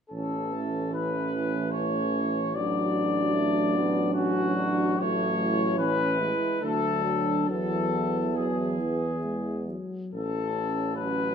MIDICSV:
0, 0, Header, 1, 6, 480
1, 0, Start_track
1, 0, Key_signature, 3, "major"
1, 0, Tempo, 814111
1, 70, Time_signature, 3, 2, 24, 8
1, 1508, Tempo, 792602
1, 2468, Tempo, 860832
1, 2948, Tempo, 806452
1, 3908, Tempo, 878477
1, 5828, Tempo, 842697
1, 6521, End_track
2, 0, Start_track
2, 0, Title_t, "Trumpet section"
2, 0, Program_c, 0, 61
2, 60, Note_on_c, 0, 69, 47
2, 528, Note_off_c, 0, 69, 0
2, 550, Note_on_c, 0, 71, 48
2, 1011, Note_on_c, 0, 73, 57
2, 1022, Note_off_c, 0, 71, 0
2, 1498, Note_on_c, 0, 74, 62
2, 1501, Note_off_c, 0, 73, 0
2, 2463, Note_off_c, 0, 74, 0
2, 2465, Note_on_c, 0, 66, 62
2, 2937, Note_off_c, 0, 66, 0
2, 2944, Note_on_c, 0, 73, 73
2, 3417, Note_on_c, 0, 71, 73
2, 3420, Note_off_c, 0, 73, 0
2, 3896, Note_off_c, 0, 71, 0
2, 3911, Note_on_c, 0, 69, 71
2, 4376, Note_off_c, 0, 69, 0
2, 4387, Note_on_c, 0, 69, 57
2, 4852, Note_off_c, 0, 69, 0
2, 4861, Note_on_c, 0, 68, 43
2, 5588, Note_off_c, 0, 68, 0
2, 5830, Note_on_c, 0, 69, 58
2, 6286, Note_off_c, 0, 69, 0
2, 6303, Note_on_c, 0, 71, 55
2, 6521, Note_off_c, 0, 71, 0
2, 6521, End_track
3, 0, Start_track
3, 0, Title_t, "French horn section"
3, 0, Program_c, 1, 60
3, 70, Note_on_c, 1, 61, 37
3, 1484, Note_off_c, 1, 61, 0
3, 1514, Note_on_c, 1, 62, 42
3, 2944, Note_on_c, 1, 64, 53
3, 2951, Note_off_c, 1, 62, 0
3, 3886, Note_off_c, 1, 64, 0
3, 3902, Note_on_c, 1, 62, 47
3, 4381, Note_off_c, 1, 62, 0
3, 4384, Note_on_c, 1, 59, 39
3, 5644, Note_off_c, 1, 59, 0
3, 5829, Note_on_c, 1, 61, 41
3, 6521, Note_off_c, 1, 61, 0
3, 6521, End_track
4, 0, Start_track
4, 0, Title_t, "Trombone"
4, 0, Program_c, 2, 57
4, 66, Note_on_c, 2, 61, 39
4, 314, Note_on_c, 2, 57, 42
4, 323, Note_off_c, 2, 61, 0
4, 1506, Note_off_c, 2, 57, 0
4, 1509, Note_on_c, 2, 54, 44
4, 1983, Note_on_c, 2, 57, 45
4, 1992, Note_off_c, 2, 54, 0
4, 2233, Note_on_c, 2, 59, 47
4, 2242, Note_off_c, 2, 57, 0
4, 2466, Note_on_c, 2, 61, 52
4, 2475, Note_off_c, 2, 59, 0
4, 2699, Note_on_c, 2, 62, 56
4, 2708, Note_off_c, 2, 61, 0
4, 2939, Note_off_c, 2, 62, 0
4, 2942, Note_on_c, 2, 57, 61
4, 3409, Note_off_c, 2, 57, 0
4, 3415, Note_on_c, 2, 61, 63
4, 3652, Note_on_c, 2, 56, 52
4, 3661, Note_off_c, 2, 61, 0
4, 3904, Note_on_c, 2, 57, 41
4, 3912, Note_off_c, 2, 56, 0
4, 4137, Note_on_c, 2, 54, 44
4, 4145, Note_off_c, 2, 57, 0
4, 4306, Note_off_c, 2, 54, 0
4, 4377, Note_on_c, 2, 52, 47
4, 5562, Note_off_c, 2, 52, 0
4, 6310, Note_on_c, 2, 54, 45
4, 6521, Note_off_c, 2, 54, 0
4, 6521, End_track
5, 0, Start_track
5, 0, Title_t, "Euphonium"
5, 0, Program_c, 3, 58
5, 74, Note_on_c, 3, 52, 38
5, 1486, Note_off_c, 3, 52, 0
5, 1506, Note_on_c, 3, 54, 47
5, 3421, Note_on_c, 3, 52, 48
5, 3430, Note_off_c, 3, 54, 0
5, 3738, Note_off_c, 3, 52, 0
5, 3907, Note_on_c, 3, 54, 48
5, 4838, Note_off_c, 3, 54, 0
5, 4856, Note_on_c, 3, 54, 44
5, 5099, Note_on_c, 3, 52, 34
5, 5108, Note_off_c, 3, 54, 0
5, 5340, Note_off_c, 3, 52, 0
5, 5344, Note_on_c, 3, 56, 39
5, 5588, Note_on_c, 3, 54, 34
5, 5596, Note_off_c, 3, 56, 0
5, 5827, Note_off_c, 3, 54, 0
5, 6521, End_track
6, 0, Start_track
6, 0, Title_t, "Tuba"
6, 0, Program_c, 4, 58
6, 66, Note_on_c, 4, 33, 37
6, 2924, Note_off_c, 4, 33, 0
6, 2948, Note_on_c, 4, 33, 55
6, 3723, Note_off_c, 4, 33, 0
6, 3911, Note_on_c, 4, 38, 50
6, 4363, Note_off_c, 4, 38, 0
6, 4388, Note_on_c, 4, 40, 41
6, 5624, Note_off_c, 4, 40, 0
6, 5832, Note_on_c, 4, 33, 44
6, 6521, Note_off_c, 4, 33, 0
6, 6521, End_track
0, 0, End_of_file